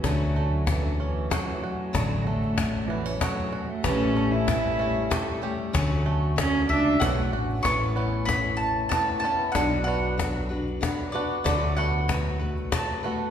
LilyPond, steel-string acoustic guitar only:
\new Staff \with { instrumentName = "Steel-string acoustic guitar" } { \time 3/4 \key d \major \tempo 4 = 95 <d fis a cis' fis'>4 <fis a cis' fis'>4 <fis a cis' fis'>4 | <d fis a cis' fis'>4 <fis a cis' fis'>4 <fis a cis' fis'>4 | <a, e g a cis' a'>4 <g a cis' a'>8 <g a cis' a'>8 <g a cis' a'>8 <g a cis' a'>8 | <d fis a cis' fis'>4 <fis a cis' fis'>8 <a fis'>8 <fis a cis' fis'>4 |
<a cis' e' b'>4 <a cis' e' b'>4 <a cis' e' b'>8 <cis' e' b'>8 | <b, fis d' fis' b'>4 <fis d' fis' b'>8 <d' fis' b'>8 <fis d' fis' b'>8 <d' fis' b'>8 | <d fis a fis' b'>4 <fis a fis' b'>8 <a fis' b'>8 <fis a fis' b'>8 <a fis' b'>8 | }